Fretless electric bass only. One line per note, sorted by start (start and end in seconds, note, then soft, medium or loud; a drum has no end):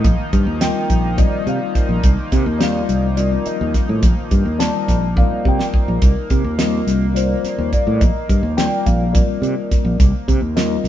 0.05 0.16 A#1 loud
0.20 muted fretless electric bass stroke soft
0.33 0.45 G2 medium
0.47 0.70 D#2 medium
0.90 1.25 A#1 medium
1.32 muted fretless electric bass stroke soft
1.47 1.58 C3 medium
1.75 muted fretless electric bass stroke soft
1.89 2.01 A#1 medium
2.04 2.15 C2 loud
2.32 2.44 C3 loud
2.46 2.81 D#2 loud
2.89 3.35 C2 medium
3.46 muted fretless electric bass stroke soft
3.61 3.72 D#2 loud
3.89 4.04 A2 medium
4.03 4.14 A#1 medium
4.32 4.43 G2 medium
4.46 4.69 D#2 medium
4.89 5.23 A#1 medium
5.31 muted fretless electric bass stroke soft
5.45 5.57 C3 medium
5.74 muted fretless electric bass stroke soft
5.88 6.00 A#1 loud
6.02 6.14 C2 medium
6.30 6.42 C3 medium
6.44 6.79 D#2 loud
6.87 7.33 C2 medium
7.44 muted fretless electric bass stroke soft
7.58 7.70 D#2 loud
7.87 8.03 A2 loud
8.02 8.13 A#1 loud
8.15 muted fretless electric bass stroke soft
8.29 8.41 G2 medium
8.43 8.66 D#2 medium
8.87 9.21 A#1 loud
9.29 muted fretless electric bass stroke soft
9.42 9.54 C3 medium
9.72 muted fretless electric bass stroke soft
9.85 9.97 A#1 loud
10.00 10.11 C2 loud
10.28 10.40 C3 loud
10.41 10.76 D#2 medium
10.84 10.88 C2 medium